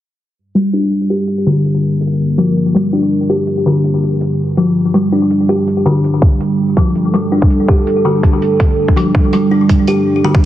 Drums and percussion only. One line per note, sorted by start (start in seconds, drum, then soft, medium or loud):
0.56 closed hi-hat medium
0.92 closed hi-hat medium
1.10 closed hi-hat soft
1.28 closed hi-hat medium
1.65 closed hi-hat medium
2.01 closed hi-hat medium
2.07 closed hi-hat medium
2.13 closed hi-hat medium
2.38 closed hi-hat medium
2.56 closed hi-hat soft
2.75 closed hi-hat medium
3.47 closed hi-hat medium
3.84 closed hi-hat medium
4.03 closed hi-hat soft
4.21 closed hi-hat medium
4.57 closed hi-hat medium
4.94 closed hi-hat medium
5.31 closed hi-hat medium
5.48 closed hi-hat soft
5.68 closed hi-hat medium
6.04 closed hi-hat medium
6.22 kick loud
6.41 closed hi-hat medium
6.77 kick medium
6.77 closed hi-hat medium
6.95 closed hi-hat soft
7.14 closed hi-hat medium
7.42 kick medium
7.50 closed hi-hat medium
7.68 kick loud
7.87 closed hi-hat medium
8.23 kick medium
8.23 closed hi-hat medium
8.42 closed hi-hat soft
8.60 kick loud
8.60 closed hi-hat medium
8.88 kick medium
8.97 closed hi-hat medium
9.15 kick loud
9.33 closed hi-hat medium
9.69 kick medium
9.69 closed hi-hat medium
9.87 closed hi-hat soft
10.35 kick medium